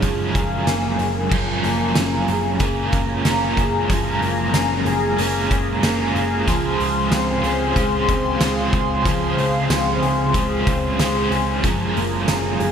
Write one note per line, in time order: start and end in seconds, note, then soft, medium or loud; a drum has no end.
0.00 0.31 F#1 medium
0.00 1.32 F3 medium
0.00 1.29 F#3 medium
0.00 0.66 G#3 medium
0.00 1.32 G#3 medium
0.00 1.97 C#4 medium
0.00 0.34 F#4 medium
0.00 1.29 G#4 medium
0.00 1.31 A#4 medium
0.00 1.30 F5 medium
0.00 1.30 G#5 medium
0.00 kick medium
0.00 closed hi-hat medium
0.05 1.34 C#4 medium
0.05 1.35 F4 medium
0.05 1.35 A#4 medium
0.35 0.63 F#1 medium
0.35 0.99 G#4 medium
0.35 kick loud
0.35 closed hi-hat medium
0.67 0.95 F#1 medium
0.67 1.64 A#3 medium
0.67 snare medium
0.67 closed hi-hat medium
0.67 tambourine soft
0.99 1.28 F#1 medium
0.99 1.67 G#4 medium
0.99 closed hi-hat soft
1.29 1.60 F#1 loud
1.29 3.90 F3 medium
1.29 2.59 F#3 medium
1.29 2.59 G#3 medium
1.29 12.72 G#4 medium
1.29 12.72 F5 medium
1.29 3.87 G#5 medium
1.29 6.44 A#5 medium
1.29 kick loud
1.29 crash loud
1.34 2.61 C#4 medium
1.34 2.63 F4 medium
1.38 2.64 A#4 medium
1.64 1.92 F#1 medium
1.64 2.60 A#3 medium
1.64 closed hi-hat soft
1.95 2.25 F#1 loud
1.95 2.93 C#4 medium
1.95 snare loud
1.95 closed hi-hat medium
1.95 tambourine medium
2.28 2.57 F#1 medium
2.28 3.58 G#4 medium
2.28 closed hi-hat soft
2.60 2.89 F#1 loud
2.60 3.24 G#3 medium
2.60 3.24 A#3 medium
2.60 3.26 C#4 medium
2.60 kick loud
2.60 closed hi-hat medium
2.64 3.28 F4 medium
2.64 3.27 A#4 medium
2.92 3.21 F#1 medium
2.92 4.55 C#4 medium
2.92 kick loud
2.92 closed hi-hat medium
3.25 3.54 F#1 loud
3.25 3.90 G#3 medium
3.25 4.21 A#3 medium
3.25 3.92 C#4 medium
3.25 snare loud
3.25 closed hi-hat medium
3.25 tambourine medium
3.29 3.94 F4 medium
3.29 3.92 A#4 medium
3.57 3.85 F#1 loud
3.57 4.87 G#4 medium
3.57 kick loud
3.57 closed hi-hat medium
3.88 4.18 F#1 loud
3.88 6.47 F3 medium
3.88 5.18 F#3 medium
3.88 5.17 G#3 medium
3.88 6.45 G#5 medium
3.88 kick loud
3.88 closed hi-hat medium
3.93 5.19 C#4 medium
3.93 5.21 F4 medium
3.93 5.22 A#4 medium
4.22 4.50 F#1 medium
4.22 5.18 A#3 medium
4.22 closed hi-hat soft
4.54 4.82 F#1 loud
4.54 5.51 C#4 medium
4.54 snare loud
4.54 closed hi-hat medium
4.54 tambourine medium
4.86 5.14 F#1 loud
4.86 6.15 G#4 medium
4.86 closed hi-hat soft
5.17 5.47 F#1 loud
5.17 5.80 G#3 medium
5.17 5.82 A#3 medium
5.17 5.83 C#4 medium
5.17 closed hi-hat medium
5.21 5.84 F4 medium
5.21 5.85 A#4 medium
5.51 5.79 F#1 medium
5.51 7.12 C#4 medium
5.51 kick loud
5.51 closed hi-hat medium
5.81 6.11 F#1 loud
5.81 6.47 G#3 medium
5.81 6.54 A#3 medium
5.81 6.47 C#4 medium
5.81 6.47 F4 medium
5.81 snare loud
5.81 closed hi-hat medium
5.81 tambourine medium
5.87 6.49 A#4 medium
6.15 6.43 F#1 loud
6.15 7.43 G#4 medium
6.15 closed hi-hat soft
6.45 6.76 C#2 loud
6.45 7.43 C#3 medium
6.45 9.04 F3 medium
6.45 9.05 F3 medium
6.45 7.47 G#3 medium
6.45 7.45 C#4 medium
6.45 7.44 F4 medium
6.45 11.60 C5 medium
6.45 11.59 C6 medium
6.45 kick loud
6.45 closed hi-hat medium
6.49 7.40 C5 loud
6.79 7.08 C#2 medium
6.79 7.76 G#3 medium
6.79 closed hi-hat soft
7.11 7.40 C#2 loud
7.11 8.07 C4 medium
7.11 snare loud
7.11 closed hi-hat medium
7.11 tambourine medium
7.42 7.72 C#2 medium
7.42 7.75 C#4 medium
7.42 7.76 F4 medium
7.42 8.73 G#4 medium
7.42 7.75 C5 medium
7.42 closed hi-hat medium
7.47 7.72 G#3 medium
7.74 8.05 C#2 loud
7.74 8.37 G#3 medium
7.74 8.41 G#3 medium
7.74 8.40 C#4 medium
7.74 8.42 F4 medium
7.74 kick medium
7.74 closed hi-hat medium
7.79 8.42 C5 medium
8.08 8.37 C#2 medium
8.08 9.69 C4 medium
8.08 kick loud
8.08 closed hi-hat medium
8.38 8.69 C#2 loud
8.38 9.06 G#3 medium
8.38 9.37 G#3 medium
8.38 9.08 C#4 medium
8.38 snare loud
8.38 closed hi-hat medium
8.38 tambourine medium
8.42 9.09 F4 medium
8.42 9.07 C5 medium
8.73 9.02 C#2 loud
8.73 10.02 G#4 medium
8.73 kick loud
8.73 closed hi-hat soft
9.02 9.34 C#2 loud
9.02 10.33 C#3 medium
9.02 11.59 F3 medium
9.02 11.63 F3 medium
9.02 kick loud
9.02 closed hi-hat medium
9.06 10.32 G#3 medium
9.06 10.35 C#4 medium
9.06 10.36 F4 medium
9.11 10.37 C5 loud
9.36 9.65 C#2 medium
9.36 10.34 G#3 medium
9.36 closed hi-hat soft
9.70 9.98 C#2 loud
9.70 10.65 C4 medium
9.70 snare loud
9.70 closed hi-hat medium
9.70 tambourine medium
10.02 10.31 C#2 loud
10.02 11.31 G#4 medium
10.02 closed hi-hat medium
10.32 10.63 C#2 medium
10.32 10.96 G#3 medium
10.32 10.98 G#3 medium
10.32 10.98 C#4 medium
10.32 kick loud
10.32 closed hi-hat medium
10.37 11.00 F4 medium
10.37 11.01 C5 medium
10.67 10.95 C#2 medium
10.67 11.70 C4 medium
10.67 kick loud
10.67 closed hi-hat medium
10.97 11.28 C#2 loud
10.97 11.62 G#3 medium
10.97 11.95 G#3 medium
10.97 11.64 C#4 medium
10.97 11.66 F4 medium
10.97 snare loud
10.97 closed hi-hat medium
10.97 tambourine medium
11.02 11.65 C5 medium
11.31 11.59 C#2 loud
11.31 11.99 G#4 medium
11.31 closed hi-hat soft
11.60 11.92 F#1 loud
11.60 12.72 F3 medium
11.60 12.72 F#3 medium
11.60 12.72 G#3 medium
11.60 12.72 G#5 medium
11.60 12.72 A#5 loud
11.64 12.72 C#4 medium
11.64 12.72 F4 medium
11.64 kick loud
11.64 closed hi-hat medium
11.69 12.72 A#4 loud
11.96 12.24 F#1 medium
11.96 12.72 A#3 medium
11.96 closed hi-hat soft
12.27 12.57 F#1 loud
12.27 12.72 C#4 medium
12.27 snare loud
12.27 closed hi-hat medium
12.27 tambourine medium
12.60 12.72 F#1 medium
12.60 12.72 G#4 medium
12.60 closed hi-hat medium